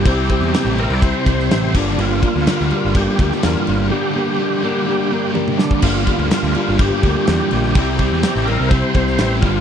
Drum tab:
CC |x-x-x-x-x-x-x-x-|x-x-x-x-x-x-x-x-|----------------|x-x-x-x-x-x-x-x-|
SD |----o------oo---|----oo-----oo---|--------------o-|----oo------o---|
T1 |----------------|----------------|------------o---|----------------|
T2 |----------------|----------------|-------------o--|----------------|
BD |o-o-----o-o---o-|--o-----o-o-----|---------------o|o-o-----o-o-----|

CC |x-x-x-x-x-x-x-x-|
SD |----oo-----oo---|
T1 |----------------|
T2 |----------------|
BD |o-o-----o-o---o-|